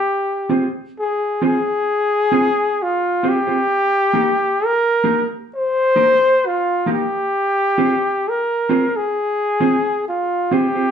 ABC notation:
X:1
M:4/4
L:1/16
Q:1/4=66
K:Fm
V:1 name="Flugelhorn"
G3 z A2 A6 F2 G2- | G4 B3 z c4 F2 G2- | G4 B3 A4- A F2 G2 |]
V:2 name="Clean electric guitar"
z2 [CFAc] z3 [CFAc] z3 [CFAc] z3 [CFAc] [CFAc] | z2 [B,EGB] z3 [B,EGB] z3 [B,EGB] z3 [B,EGB] z | z2 [CFAc] z3 [CFAc] z3 [CFAc] z3 [CFAc] [CFAc] |]